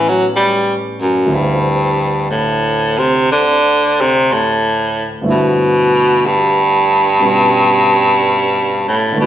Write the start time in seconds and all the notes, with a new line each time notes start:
Already playing: A2 E3 B3 C#4 G4
0.09 F#3
0.36 G3
1.01 F#2
1.26 D2 D3 F3 C4 E4
1.34 G2
2.31 A2
2.98 C3
3.32 D3
4.01 C3
4.32 A2
5.22 G2 D3 F3 A3 B3
5.26 E4
5.31 B2
6.26 G2
7.20 B2 G3 B3 C#4 F4
8.88 A2
9.12 D3 E3
9.17 B2 A3 D4
9.22 E4